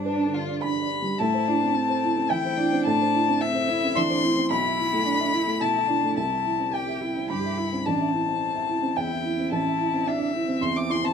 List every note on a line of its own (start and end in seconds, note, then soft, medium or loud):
0.00 1.15 G2 medium
0.00 0.17 D4 soft
0.00 0.92 D4 medium
0.00 1.22 C5 medium
0.00 0.07 D5 soft
0.05 0.35 D4 medium
0.05 0.59 B4 soft
0.05 0.37 D5 soft
0.25 0.55 D3 soft
0.34 0.62 F4 medium
0.45 0.74 D5 soft
0.62 0.94 D4 soft
0.62 1.15 B5 medium
0.62 1.20 B5 medium
0.82 1.12 D5 soft
1.02 1.20 G3 soft
1.19 2.82 A2 medium
1.19 1.49 E4 medium
1.19 2.32 A5 medium
1.19 2.27 A5 medium
1.34 1.56 C5 medium
1.48 1.77 D4 medium
1.48 1.70 E4 medium
1.62 2.06 C4 soft
1.76 2.32 C4 medium
1.89 2.11 C5 medium
2.04 2.25 E4 medium
2.17 2.39 C4 medium
2.30 2.52 E3 soft
2.30 2.59 E4 medium
2.30 2.81 G5 medium
2.30 2.84 G5 medium
2.45 2.67 C5 medium
2.58 3.43 D4 medium
2.58 2.81 E4 medium
2.73 2.94 C4 medium
2.85 4.46 A2 medium
2.85 3.42 A5 medium
2.85 3.37 A5 loud
3.01 3.22 C5 medium
3.14 3.36 E4 medium
3.28 3.72 C4 medium
3.41 3.70 C4 medium
3.41 3.97 E5 medium
3.41 3.92 E5 medium
3.55 3.77 C5 medium
3.69 3.98 E4 medium
3.69 3.91 E4 medium
3.84 4.05 C4 medium
3.95 4.18 E3 medium
3.95 4.25 D4 medium
3.95 4.46 C6 loud
3.95 4.50 C6 loud
4.10 4.31 C5 medium
4.24 4.50 C4 medium
4.24 4.45 E4 medium
4.37 4.50 C4 medium
4.51 6.13 B1 medium
4.51 5.07 E4 medium
4.51 5.62 B5 loud
4.51 5.56 B5 loud
4.65 4.87 E5 medium
4.79 5.00 E4 medium
4.93 5.36 A3 medium
5.06 5.35 D4 medium
5.20 5.41 E5 medium
5.33 5.55 E4 medium
5.33 5.60 E4 medium
5.47 5.69 A3 medium
5.60 5.83 B2 soft
5.60 5.89 E4 medium
5.60 6.12 A5 medium
5.60 6.16 A5 medium
5.74 5.96 E5 soft
5.88 6.17 D4 medium
5.88 6.11 E4 soft
6.03 6.17 A3 soft
6.16 7.82 C2 medium
6.16 6.67 E4 medium
6.16 6.76 A5 medium
6.16 6.69 A5 medium
6.32 6.54 E5 soft
6.46 6.68 E4 soft
6.59 7.04 C4 soft
6.72 7.03 G4 medium
6.72 7.26 G5 medium
6.72 7.29 G5 medium
6.88 7.10 E5 soft
7.01 7.32 E4 medium
7.01 7.24 E4 soft
7.17 7.38 C4 soft
7.30 7.52 G2 soft
7.30 7.59 G4 medium
7.30 7.82 B5 medium
7.30 7.87 B5 medium
7.45 7.66 E5 soft
7.58 7.80 E4 soft
7.58 7.85 E4 soft
7.73 7.86 C4 soft
7.85 9.48 A1 medium
7.85 8.14 D4 medium
7.85 8.98 A5 medium
7.85 8.93 A5 medium
8.00 8.22 E5 soft
8.12 8.97 C4 soft
8.12 8.36 E4 soft
8.28 8.72 C4 soft
8.55 8.77 E5 soft
8.69 8.91 E4 soft
8.83 9.05 C4 soft
8.96 9.19 E2 soft
8.96 9.23 E4 medium
8.96 9.51 G5 medium
8.96 9.48 G5 medium
9.11 9.33 E5 soft
9.24 10.09 E4 medium
9.24 9.47 E4 soft
9.39 9.61 C4 soft
9.52 11.13 A1 medium
9.52 10.09 A5 medium
9.52 10.04 A5 medium
9.66 9.88 E5 soft
9.80 10.02 E4 soft
9.94 10.38 C4 soft
10.07 10.35 D4 medium
10.07 10.19 E5 medium
10.07 10.64 E5 medium
10.33 11.13 C4 medium
10.33 10.57 E4 medium
10.48 10.70 C4 soft
10.61 10.84 E2 soft
10.61 10.74 C6 medium
10.61 10.77 C6 medium
10.76 10.98 E5 soft
10.76 10.92 D6 medium
10.76 10.89 D6 medium
10.89 11.11 E4 medium
10.89 11.03 C6 medium
10.89 11.06 C6 medium
11.03 11.13 C4 soft
11.03 11.13 A5 medium